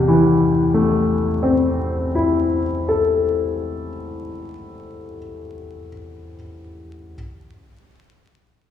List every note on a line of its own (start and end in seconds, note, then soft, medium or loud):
0.00 2.06 A1 soft
0.00 2.63 E2 soft
0.00 3.24 A2 soft
0.00 3.88 C3 soft
0.08 4.52 E3 soft
0.74 5.18 A3 soft
1.43 5.87 C4 soft
2.15 6.33 E4 soft
2.89 6.34 A4 soft